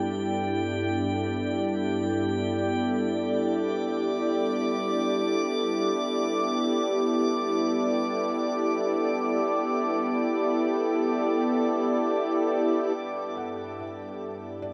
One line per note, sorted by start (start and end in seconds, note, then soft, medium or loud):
0.00 3.05 G2 medium
0.00 12.97 G3 medium
0.00 14.73 B3 medium
0.00 12.97 D4 medium
0.00 14.73 E4 medium
0.00 14.73 G4 medium
0.00 14.73 A4 medium
0.00 14.73 D5 medium
0.00 3.07 G5 medium
3.06 12.99 D6 medium
12.96 14.73 G2 medium
12.96 14.73 G3 medium
12.96 14.73 D4 medium
13.37 13.81 F#5 medium
13.80 14.66 E5 medium
14.62 14.73 D5 medium